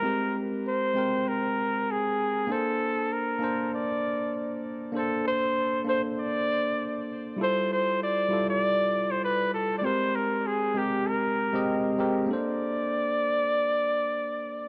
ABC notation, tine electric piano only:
X:1
M:4/4
L:1/16
Q:"Swing 16ths" 1/4=98
K:Bblyd
V:1 name="Tine electric piano"
[_A,CGB]6 [A,CBg]8- [A,CBg]2 | [B,DAc]6 [B,Dca]8- [B,Dca]2 | [B,DAc]6 [B,DAc]8- [B,DAc]2 | [G,EFA]6 [G,EFA]8- [G,EFA]2 |
[_A,CGB]6 [A,CGB]4- [A,CGB] [A,CG_e]3 [A,CGB]2 | [B,DAc]16 |]